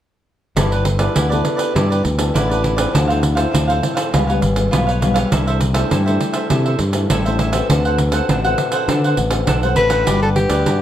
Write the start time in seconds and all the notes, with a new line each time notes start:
0.56 G1 G3 B3 E4 G4 A4 B4 D5, pandeiro
0.71 G4 B4 D5, pandeiro
0.85 muted cavaquinho stroke, pandeiro
0.99 B3 E4 G4 A4 B4 D5, pandeiro
1.15 D2 D3 E4 G4 B4 D5, pandeiro
1.30 B3 E4 G4 A4 B4 D5, pandeiro
1.45 pandeiro
1.57 G4 B4 D5, pandeiro
1.75 G2 G3 B3 E4 G4 A4 B4 D5, pandeiro
1.90 G4 B4 D5, pandeiro
2.03 D2, muted cavaquinho stroke, pandeiro
2.18 B3 E4 A4, pandeiro
2.34 A1 D3 E4 G4 B4 D5, pandeiro
2.49 B3 E4 G4 A4 B4 D5, pandeiro
2.63 E4 G4 B4 D5, pandeiro
2.76 F3 C4 E4 G4 B4 D5, pandeiro
2.93 D2 D3 D4 A4 C5 F5, pandeiro
3.08 F3 A4 C5 F5, pandeiro
3.12 C4 E4
3.21 muted cavaquinho stroke, pandeiro
3.35 F3 C4 E4 A4 C5 F5, pandeiro
3.51 D2 A2 D4 A4 C5 F5, pandeiro
3.68 A4 C5 F5, pandeiro
3.82 F3 C4 E4, pandeiro
3.95 A4 C5 F5, pandeiro
4.12 C#2 C#3 G3 B3 F4 B4 C#5 F5, pandeiro
4.27 G3 B3 F4 B4 C#5 F5, pandeiro
4.41 G#1, muted cavaquinho stroke, pandeiro
4.56 G3 B3 F4, pandeiro
4.71 B1 G#2 F4 B4 C#5 F5, pandeiro
4.87 B4 C#5 F5, pandeiro
5.01 G3 B3 F4 B4 C#5 F5, pandeiro
5.14 B4 C#5 F5, pandeiro
5.31 C2 C3 A3 D4 E4 A4 C5 E5, pandeiro
5.47 A4 C5 E5, pandeiro
5.61 muted cavaquinho stroke, pandeiro
5.74 A3 D4 E4 A4 C5 E5, pandeiro
5.90 G2 G3 E4 A4 C5 E5, pandeiro
6.06 A3 D4 E4 A4 C5 E5, pandeiro
6.21 pandeiro
6.33 A4 C5 E5, pandeiro
6.50 C3 A3 D4 E4 A4 C5 E5, pandeiro
6.66 A4 C5 E5, pandeiro
6.79 G2, muted cavaquinho stroke, pandeiro
6.93 A3 D4 E4, pandeiro
7.10 A1 G3 E4 A4 C5 E5, pandeiro
7.25 A3 D4 E4 A4 C5 E5, pandeiro
7.39 E4 A4 C5 E5, pandeiro
7.52 C4 F#4 A4 B4 C5 E5, pandeiro
7.69 D2 D3 D4 A4 C5 F#5, pandeiro
7.85 A4 C5 F#5, pandeiro
7.98 muted cavaquinho stroke, pandeiro
8.12 C4 F#4 A4 B4 C5 F#5, pandeiro
8.29 A1 A2 D4 A4 C5 F#5, pandeiro
8.44 C4 F#4 A4 B4 C5 F#5, pandeiro
8.58 pandeiro
8.72 A4 C5 F#5, pandeiro
8.87 D3 C4 D4 F#4 A4 B4 C5 F#5, pandeiro
9.04 A4 C5 F#5, pandeiro
9.17 A1, muted cavaquinho stroke, pandeiro
9.30 C4 F#4 B4, pandeiro
9.47 B1 A2 D4 A4 C5 F#5, pandeiro
9.63 C4 F#4 A4 B4 C5 F#5, pandeiro
9.75 A1 D4 A4 B4 C5 F#5, pandeiro
9.90 D4 F#4 A4 B4 C5 F#5, pandeiro
10.06 G1 G3 F#4 G4 B4 D5, pandeiro
10.22 D4 F#4 G4 A4 B4 D5, pandeiro
10.36 G4, muted cavaquinho stroke, pandeiro
10.49 D2 G4 B4 D5, pandeiro
10.66 G2 D3 D4 F#4 B4, pandeiro